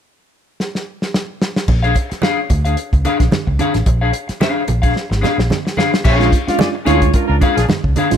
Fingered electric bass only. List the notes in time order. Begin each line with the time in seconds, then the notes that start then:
1.68 A#1
2.12 muted fingered electric bass stroke
2.50 D2
2.93 C#2
3.20 A#1
3.47 C#2
3.75 A1
3.86 A#1
4.29 muted fingered electric bass stroke
4.69 A#1
5.11 G#1
5.38 A#1
6.05 A#1
6.48 muted fingered electric bass stroke
6.87 D2
7.29 C#2
7.57 A#1
7.84 C#2
8.12 A1